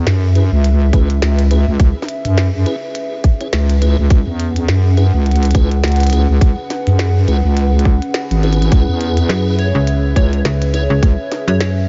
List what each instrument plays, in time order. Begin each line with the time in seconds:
Already playing: analog synth pad C#4 G#4 B4 E5
0.06 wobble bass F#2, snare, closed hi-hat
0.35 tonewheel organ C#4 E4 G#4 B4, closed hi-hat
0.52 wobble bass C#2
0.64 closed hi-hat
0.93 wobble bass C#2, tonewheel organ C#4 E4 G#4 B4, kick, closed hi-hat
1.10 closed hi-hat
1.22 wobble bass C#2, snare, closed hi-hat
1.39 closed hi-hat
1.51 tonewheel organ C#4 E4 G#4 B4, closed hi-hat
1.68 wobble bass C#2
1.80 wobble bass C#2, kick, closed hi-hat
2.02 snare
2.09 closed hi-hat
2.25 wobble bass F#2, closed hi-hat
2.38 snare, closed hi-hat
2.66 tonewheel organ C#4 E4 G#4 B4, closed hi-hat
2.95 closed hi-hat
3.24 kick, closed hi-hat
3.41 tonewheel organ C#4 E4 G#4 C#5, closed hi-hat
3.53 wobble bass C#2, snare, closed hi-hat
3.70 closed hi-hat
3.82 tonewheel organ C#4 E4 G#4 B4, closed hi-hat
3.98 wobble bass C#2
4.10 wobble bass C#2, analog synth pad F#5, kick, closed hi-hat
4.27 wobble bass E2
4.40 closed hi-hat
4.56 closed hi-hat
4.68 wobble bass F#2, snare, closed hi-hat
4.97 tonewheel organ C#4 E4 G#4 B4, closed hi-hat
5.14 wobble bass C#2
5.26 closed hi-hat
5.31 closed hi-hat
5.36 closed hi-hat
5.43 closed hi-hat
5.45 closed hi-hat
5.51 closed hi-hat
5.55 wobble bass C#2, tonewheel organ C#4 E4 G#4 B4, kick, closed hi-hat
5.71 closed hi-hat
5.83 wobble bass C#2, snare, closed hi-hat
5.88 closed hi-hat
5.92 closed hi-hat
5.96 closed hi-hat
6.00 closed hi-hat
6.03 closed hi-hat
6.07 closed hi-hat
6.10 tonewheel organ C#4 E4 G#4 B4, closed hi-hat
6.13 closed hi-hat
6.29 wobble bass C#2
6.41 wobble bass C#2, kick, closed hi-hat
6.70 snare, closed hi-hat
6.87 wobble bass F#2, closed hi-hat
6.99 snare, closed hi-hat
7.28 wobble bass C#2, tonewheel organ C#4 E4 G#4 B4, closed hi-hat
7.44 wobble bass C#2
7.57 closed hi-hat
7.79 closed hi-hat
7.85 kick
8.02 closed hi-hat
8.14 snare, closed hi-hat
8.31 wobble bass G#1, closed hi-hat
8.43 tonewheel organ C#4 E4 G#4 B4, closed hi-hat
8.53 closed hi-hat
8.62 closed hi-hat
8.72 wobble bass C#2, analog synth pad E5, kick, closed hi-hat
8.88 wobble bass E2
9.01 closed hi-hat
9.17 closed hi-hat
9.29 fm bass F#2, snare, closed hi-hat
9.59 tonewheel organ C#4 E4 G#4 B4, digital synth lead C#5, closed hi-hat
9.75 fm bass C#2
9.87 closed hi-hat
10.16 wobble bass C#2, tonewheel organ C#4 E4 G#4 B4, digital synth lead C#5, kick, closed hi-hat
10.33 digital synth lead C#5, closed hi-hat
10.45 fm bass C#2, snare, closed hi-hat
10.62 closed hi-hat
10.74 tonewheel organ C#4 E4 G#4 B4, digital synth lead C#5, closed hi-hat
10.90 fm bass C#2
11.03 wobble bass C#2, kick, closed hi-hat
11.32 snare, closed hi-hat
11.48 fm bass F#2, digital synth lead C#5, closed hi-hat
11.61 digital synth lead C#5, snare, closed hi-hat